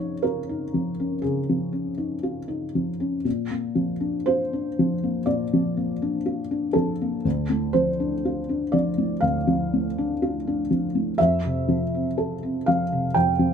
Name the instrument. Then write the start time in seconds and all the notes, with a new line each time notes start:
felt piano
Already playing: C#3 F3 C#4 C#5
0.00 D#4
0.23 F4 A#4
0.49 D#4
0.74 F3
1.00 C#4
1.22 C#3 G#4
1.49 F3
1.73 C#4
1.98 D#4
2.23 F4
2.48 D#4
2.75 F3
3.00 C#4
3.25 A#2
3.51 A#3
3.75 F3
4.00 D4
4.26 F4 C5
4.53 D4
4.79 F3
5.03 A#3
5.26 A#2 D5
5.53 F3
5.77 A#3
6.02 D4
6.26 F4
6.51 D4
6.73 F3 A4
7.01 A#3
7.25 D2
7.50 A2
7.73 F3 C5
8.00 D4
8.25 F4
8.49 D4
8.72 F3 D5
8.98 A2
9.21 D2 F5
9.47 F3
9.73 A2
9.98 D4
10.22 F4
10.47 D4
10.70 F3
10.95 A2
11.18 F2 E5
11.45 C3
11.68 F3
11.94 C4
12.18 A4
12.43 C4
12.66 F3 F5
12.92 C3
13.14 F2 G5
13.39 F3